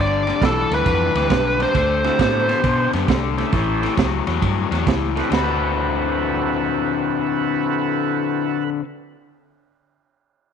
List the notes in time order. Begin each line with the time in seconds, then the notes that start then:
Already playing: G1 G2 D3
0.01 D5
0.27 G2 D3, snare, ride
0.41 B1 G2 E3 B3 D4 F4 A4, kick, snare, ride
0.45 A4
0.70 D2 G2 E3, snare, ride
0.75 B4
0.85 F2 G2 E3 B3 D4 F4 B4, kick, ride
1.14 D2 G2 E3, snare, ride
1.30 B1 G2 D3, kick, snare, ride
1.59 G2 D3 C5, snare, ride
1.75 D2 D3 A3, kick, snare, ride
2.04 D3 A3 C4 E4 F#4 A4, snare, ride
2.19 A2 D3 B3, kick, snare, ride
2.49 D3 B3, snare, ride
2.63 B2 D3 B3, kick, ride
2.93 F#2 D3 B3, snare, ride
3.08 C2 D3 A3, kick, snare, ride
3.37 D3 A3 C#4 E4 G4 A4, snare, ride
3.53 A1 A2 E3, kick, snare, ride
3.82 A2 E3, snare, ride
3.97 C#2 A2 F#3, kick, snare, ride
4.27 E2 A2 F#3, snare, ride
4.41 G2 A2 F#3, kick, ride
4.71 E2 A2 F#3, snare, ride
4.86 C#2 A2 E3, kick, snare, ride
5.15 A2 D3 E3 C4 E4 F#4 B4, snare, ride
5.26 E4
5.30 D2 D3 C4 F#4, snare, crash
5.34 B4
5.38 A4
5.44 B4